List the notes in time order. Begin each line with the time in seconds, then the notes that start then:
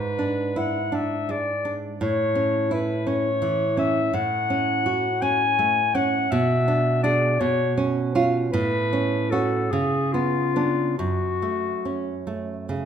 Already playing: G#2 B4
0.19 D4
0.56 E4 F#5
0.92 D4 E5
1.29 G#3 D5
1.65 D4
2.01 A2 C#5
2.35 C#4
2.71 E4 B4
3.07 C#4 C#5
3.42 E3
3.77 C#4 E5
4.13 A2 F#5
4.50 C#4
4.86 F#4
5.22 C#4 G#5
5.59 A3
5.95 C#4 F#5
6.31 B2 E5
6.68 D4
7.03 D4 G#4 D5
7.40 B2 C#5
7.78 C#4
8.15 C#4 F4
8.52 A2 B4
8.93 C#4
9.30 C#4 F#4 A4
9.71 C#3 G#4
10.13 B3 F4
10.56 B3 D4
10.98 F#2 F#4
11.42 A3
11.85 C#4
12.27 A3
12.69 C#3